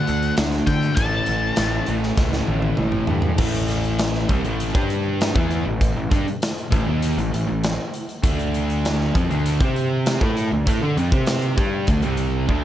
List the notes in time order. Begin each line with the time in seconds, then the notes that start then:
Already playing: D3 A3 D4 F#5
0.07 D2, closed hi-hat
0.23 closed hi-hat
0.37 D2 D3 A3 D4, snare, closed hi-hat
0.52 snare, closed hi-hat
0.66 D3 A3 D4 G5, kick, snare, closed hi-hat
0.82 closed hi-hat
0.96 A1 A2 E3 A3 A5, kick, closed hi-hat
1.26 A1, closed hi-hat
1.56 A1 A2 E3 A3, snare, closed hi-hat
1.86 A1 A2 E3 A3, closed hi-hat
2.03 snare
2.17 C#2 A2 E3 A3, kick, snare
2.33 snare
2.47 A1, high tom
2.62 high tom
2.77 A1 A2 E3 A3, mid tom
2.92 mid tom
3.07 G2 A2 E3 A3, floor tom
3.22 floor tom
3.38 A1 A2 E3 A3, kick, crash
3.53 closed hi-hat
3.68 snare, closed hi-hat
3.84 closed hi-hat
3.99 snare, closed hi-hat
4.15 snare
4.29 C2 C3 G3, kick, closed hi-hat
4.44 A1 A2 E3 A3, closed hi-hat
4.60 closed hi-hat
4.75 G2 G3 D4 G4, kick, closed hi-hat
4.90 closed hi-hat
5.21 snare, closed hi-hat
5.35 E2 E3 B3 E4, kick
5.51 closed hi-hat
5.66 A1 A2 E3
5.81 kick, closed hi-hat
5.96 A1 A2 E3
6.11 G2 G3 D4, kick, closed hi-hat
6.28 closed hi-hat
6.42 snare, closed hi-hat
6.58 closed hi-hat
6.71 A1 A2 E3, kick, closed hi-hat
6.86 D#2 D#3 A#3 D#4
7.02 closed hi-hat
7.17 A1 A2 E3, closed hi-hat
7.32 A1 A2 E3, closed hi-hat
7.47 A1 A2 E3
7.64 snare, closed hi-hat
7.94 closed hi-hat
8.09 closed hi-hat
8.23 D2 D3 A3 D4, kick, closed hi-hat
8.39 closed hi-hat
8.54 closed hi-hat
8.70 closed hi-hat
8.85 snare, closed hi-hat
9.01 snare
9.15 F2 F3 C4, kick, closed hi-hat
9.29 D2 D3 A3 D4, closed hi-hat
9.46 closed hi-hat
9.60 C3 C4 G4 C5, kick, closed hi-hat
9.76 closed hi-hat
10.06 snare, closed hi-hat
10.20 A2 A3 E4 A4, kick
10.37 closed hi-hat
10.51 D2 D3 A3
10.65 A2 A3 E4, kick, closed hi-hat
10.81 D3 D4 A4
10.97 F2 F3 C4, closed hi-hat
11.12 C3 C4 G4 C5, kick, closed hi-hat
11.26 snare, closed hi-hat
11.42 closed hi-hat
11.57 G2 G3 D4 G4, kick, closed hi-hat
11.87 D2 D3 A3, kick, closed hi-hat
12.02 C2 C3 G3 C4, closed hi-hat
12.17 closed hi-hat
12.49 D2 D3 A3 D4, kick